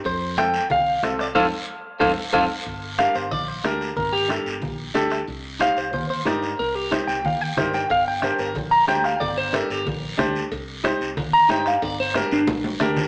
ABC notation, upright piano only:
X:1
M:4/4
L:1/8
Q:1/4=183
K:Gm
V:1 name="Upright piano"
z2 [CFA] z3 [CFA] z | [CFA] z3 [CFA] z [CFA] z | z2 [DGB] z3 [DGB] z | z2 [DGA] z3 [DGA] z |
z2 [EGc] z3 [EGd] z | z2 [EGc] z3 [EGB] z | z2 [DGB] z3 [DGc] z | z2 [DGA] z3 [DGc] z |
z2 [EGc] z3 [EGc] z | z2 [DGB] z3 [DGB] z |]